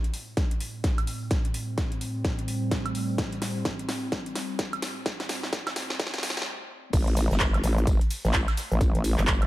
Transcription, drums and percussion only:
0.04 closed hi-hat
0.14 open hi-hat
0.37 kick, snare, closed hi-hat
0.51 closed hi-hat
0.60 open hi-hat
0.84 kick, snare, closed hi-hat
0.98 closed hi-hat, high woodblock
1.07 open hi-hat
1.31 kick, snare, closed hi-hat
1.45 closed hi-hat
1.54 open hi-hat
1.78 kick, snare, closed hi-hat
1.92 closed hi-hat
2.01 open hi-hat
2.25 kick, snare, closed hi-hat
2.39 closed hi-hat
2.48 open hi-hat
2.71 kick, snare, closed hi-hat
2.86 closed hi-hat, high woodblock
2.95 open hi-hat
3.18 kick, snare, closed hi-hat
3.33 closed hi-hat
3.42 snare, open hi-hat
3.65 kick, snare, closed hi-hat
3.79 closed hi-hat
3.89 snare, open hi-hat
4.12 kick, snare, closed hi-hat
4.26 closed hi-hat
4.35 snare, open hi-hat
4.59 kick, snare, closed hi-hat
4.73 closed hi-hat, high woodblock
4.82 snare, open hi-hat
5.06 kick, snare, closed hi-hat
5.20 snare, closed hi-hat
5.29 snare, open hi-hat
5.43 snare
5.53 kick, snare, closed hi-hat
5.67 snare, closed hi-hat, high woodblock
5.76 snare, open hi-hat
5.90 snare
6.00 kick, snare, closed hi-hat
6.07 snare
6.14 snare, closed hi-hat
6.18 snare
6.23 snare, open hi-hat
6.30 snare
6.37 snare
6.42 snare
6.93 kick, closed hi-hat, tambourine, crash, shaker
7.08 closed hi-hat
7.17 open hi-hat, ride, tambourine, shaker
7.31 snare, shaker
7.40 kick, snare, clap, closed hi-hat, tambourine, shaker
7.54 closed hi-hat, high woodblock
7.64 open hi-hat, ride, tambourine, shaker
7.78 shaker
7.87 kick, closed hi-hat, tambourine, shaker
8.01 closed hi-hat
8.10 open hi-hat, ride, tambourine, shaker
8.25 snare, shaker
8.33 kick, snare, clap, closed hi-hat, tambourine, shaker
8.48 snare, closed hi-hat, high woodblock
8.57 snare, open hi-hat, ride, tambourine, shaker
8.72 shaker
8.81 kick, closed hi-hat, tambourine, shaker
8.95 closed hi-hat
9.04 open hi-hat, ride, tambourine, shaker
9.18 clap, closed hi-hat, shaker
9.27 kick, snare, clap, closed hi-hat, tambourine, shaker
9.42 closed hi-hat, high woodblock

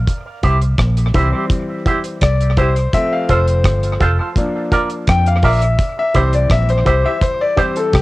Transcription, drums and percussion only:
0.07 kick, closed hi-hat
0.43 kick, closed hi-hat
0.62 closed hi-hat
0.78 kick, cross-stick, closed hi-hat
0.97 closed hi-hat
1.14 kick, closed hi-hat
1.50 kick, closed hi-hat
1.86 kick, closed hi-hat
2.04 closed hi-hat
2.21 kick, cross-stick, closed hi-hat
2.41 closed hi-hat
2.57 kick, closed hi-hat
2.76 closed hi-hat
2.93 kick, closed hi-hat
3.29 kick, closed hi-hat
3.48 closed hi-hat
3.64 kick, cross-stick, closed hi-hat
3.83 closed hi-hat
4.00 kick, closed hi-hat
4.36 kick, closed hi-hat
4.72 kick, closed hi-hat
4.90 closed hi-hat
5.07 kick, cross-stick, closed hi-hat
5.26 closed hi-hat
5.42 kick, open hi-hat
5.61 closed hi-hat
5.79 kick, closed hi-hat
6.15 kick, closed hi-hat
6.33 closed hi-hat
6.50 kick, cross-stick, closed hi-hat
6.69 closed hi-hat
6.86 kick, closed hi-hat
7.21 kick, closed hi-hat
7.57 kick, closed hi-hat
7.76 closed hi-hat
7.93 kick, cross-stick, closed hi-hat

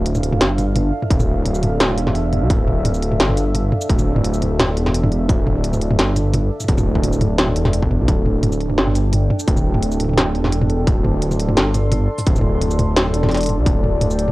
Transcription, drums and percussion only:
0.06 closed hi-hat
0.15 mid tom, shaker
0.23 closed hi-hat
0.33 mid tom
0.41 snare, closed hi-hat
0.58 closed hi-hat, mid tom, shaker
0.76 closed hi-hat, mid tom
1.02 mid tom
1.10 kick, closed hi-hat
1.20 mid tom, shaker
1.45 closed hi-hat, mid tom
1.55 shaker
1.63 closed hi-hat, mid tom
1.80 snare, closed hi-hat
1.89 mid tom
1.98 closed hi-hat
2.07 snare, mid tom
2.15 closed hi-hat
2.33 closed hi-hat, mid tom
2.50 kick, closed hi-hat
2.67 mid tom
2.85 closed hi-hat, mid tom
2.94 shaker
3.02 closed hi-hat
3.12 mid tom
3.20 snare, closed hi-hat
3.29 mid tom
3.37 closed hi-hat, shaker
3.55 closed hi-hat, mid tom
3.72 mid tom
3.81 shaker
3.90 kick, closed hi-hat
3.99 mid tom, shaker
4.16 mid tom
4.24 closed hi-hat
4.34 shaker
4.42 closed hi-hat, mid tom
4.59 snare, closed hi-hat, mid tom
4.77 closed hi-hat
4.86 snare, mid tom
4.94 closed hi-hat
5.03 mid tom
5.12 closed hi-hat
5.29 kick, closed hi-hat, mid tom
5.47 mid tom
5.64 closed hi-hat
5.73 mid tom, shaker
5.81 closed hi-hat
5.91 mid tom
5.99 snare, closed hi-hat
6.16 closed hi-hat, mid tom, shaker
6.34 closed hi-hat, mid tom
6.60 mid tom, shaker
6.64 mid tom
6.68 kick, closed hi-hat, mid tom
6.73 mid tom
6.78 mid tom, shaker
6.95 kick
7.03 closed hi-hat, mid tom
7.13 shaker
7.21 closed hi-hat, mid tom
7.38 snare, closed hi-hat
7.48 mid tom
7.56 closed hi-hat
7.65 snare, mid tom
7.73 closed hi-hat
7.83 kick
7.91 mid tom
8.08 kick, closed hi-hat
8.26 mid tom
8.43 closed hi-hat, mid tom
8.52 shaker
8.61 closed hi-hat
8.70 mid tom
8.78 snare, closed hi-hat
8.87 mid tom
8.95 closed hi-hat, shaker
9.13 closed hi-hat, mid tom
9.30 mid tom
9.39 shaker
9.48 kick, closed hi-hat
9.57 mid tom, shaker
9.74 mid tom
9.83 closed hi-hat
9.92 shaker
10.00 closed hi-hat, mid tom
10.05 mid tom
10.09 mid tom
10.13 mid tom
10.18 snare, closed hi-hat, mid tom
10.35 closed hi-hat
10.44 snare, mid tom
10.52 closed hi-hat
10.62 mid tom
10.70 closed hi-hat
10.87 kick, closed hi-hat, mid tom
11.05 mid tom
11.22 closed hi-hat
11.31 mid tom, shaker
11.39 closed hi-hat
11.49 mid tom
11.57 snare, closed hi-hat
11.74 closed hi-hat, mid tom, shaker
11.92 closed hi-hat, mid tom
12.18 mid tom, shaker
12.27 kick, closed hi-hat
12.36 mid tom, shaker
12.38 mid tom
12.41 mid tom
12.62 closed hi-hat, mid tom
12.71 shaker
12.79 closed hi-hat, mid tom
12.97 snare, closed hi-hat
13.06 mid tom
13.14 closed hi-hat
13.23 snare, mid tom
13.29 snare, closed hi-hat
13.35 snare, closed hi-hat
13.37 closed hi-hat
13.41 closed hi-hat
13.43 closed hi-hat
13.46 closed hi-hat, mid tom
13.66 kick, closed hi-hat
13.84 mid tom
14.01 closed hi-hat, mid tom
14.11 shaker
14.19 closed hi-hat
14.28 mid tom

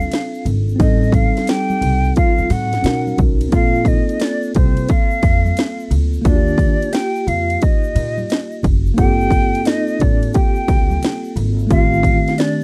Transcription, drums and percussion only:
0.00 high conga, shaker
0.12 snare, hi-hat pedal, ride, shaker
0.34 shaker
0.46 ride, high conga, low conga, shaker
0.69 shaker
0.80 kick, ride, shaker
1.03 shaker
1.12 kick, ride, high conga, low conga, shaker
1.37 snare, ride, shaker
1.47 snare, hi-hat pedal, ride, shaker
1.70 high conga, shaker
1.82 ride, low conga, shaker
2.04 shaker
2.16 kick, ride, shaker
2.38 shaker
2.50 ride, shaker
2.73 snare, ride, high conga, shaker
2.84 snare, hi-hat pedal, ride, shaker
3.07 high conga, shaker
3.18 kick, ride, high conga, low conga, shaker
3.41 ride, shaker
3.52 kick, ride, shaker
3.75 shaker
3.85 kick, ride, low conga, shaker
4.09 ride, shaker
4.20 snare, hi-hat pedal, ride, shaker
4.43 shaker
4.55 kick, ride, low conga, shaker
4.77 ride, shaker
4.89 kick, ride, shaker
5.11 shaker
5.23 kick, ride, shaker
5.45 high conga, shaker
5.57 snare, hi-hat pedal, ride, shaker
5.80 shaker
5.91 ride, high conga, low conga, shaker
6.13 shaker
6.25 kick, ride, shaker
6.48 shaker
6.58 kick, ride, low conga, shaker
6.82 ride, shaker
6.93 snare, hi-hat pedal, ride, shaker
7.15 shaker
7.27 ride, low conga, shaker
7.50 ride, shaker
7.61 kick, ride, shaker
7.83 shaker
7.96 ride, shaker
8.18 high conga, shaker
8.29 snare, hi-hat pedal, ride, shaker
8.52 shaker
8.63 kick, ride, high conga, low conga, shaker
8.86 shaker
8.98 kick, ride, shaker
9.21 shaker
9.31 kick, ride, low conga, shaker
9.54 ride, shaker
9.65 snare, hi-hat pedal, ride, shaker
9.88 shaker
9.99 kick, ride, low conga, shaker
10.22 ride, shaker
10.33 kick, ride, shaker
10.55 shaker
10.68 kick, ride, shaker
10.90 high conga, shaker
11.02 snare, hi-hat pedal, ride, shaker
11.25 shaker
11.36 ride, high conga, low conga, shaker
11.59 shaker
11.70 kick, ride, shaker
11.93 shaker
12.03 kick, ride, low conga, shaker
12.28 snare, ride, shaker
12.38 snare, hi-hat pedal, ride, shaker

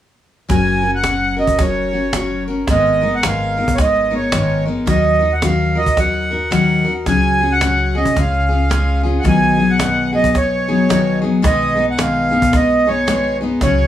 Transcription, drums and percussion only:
0.50 cajon bass, cajon slap
0.66 cajon slap
1.04 cajon slap
1.37 cajon slap
1.47 cajon bass
1.59 cajon bass, cajon slap
1.75 cajon slap
2.13 cajon slap
2.67 cajon bass, cajon slap
2.85 cajon slap
3.23 cajon slap
3.57 cajon slap
3.68 cajon bass
3.78 cajon bass, cajon slap
3.96 cajon slap
4.32 cajon slap
4.66 cajon slap
4.87 cajon bass, cajon slap
5.05 cajon slap
5.42 cajon slap
5.77 cajon slap
5.86 cajon bass
5.97 cajon bass, cajon slap
6.14 cajon slap
6.52 cajon slap
6.85 cajon slap
7.06 cajon bass, cajon slap
7.61 cajon slap
8.05 cajon bass
8.16 cajon bass, cajon slap
8.33 cajon slap
8.50 cajon slap
8.71 cajon slap
9.25 cajon bass, cajon slap
9.42 cajon slap
9.80 cajon slap
10.13 cajon slap
10.24 cajon bass
10.35 cajon bass, cajon slap
10.53 cajon slap
10.90 cajon slap
11.24 cajon slap
11.44 cajon bass, cajon slap
11.61 cajon slap
11.99 cajon slap
12.33 cajon slap
12.42 cajon bass
12.53 cajon bass, cajon slap
12.70 cajon slap
13.08 cajon slap
13.41 cajon slap
13.61 cajon bass, cajon slap
13.78 cajon slap

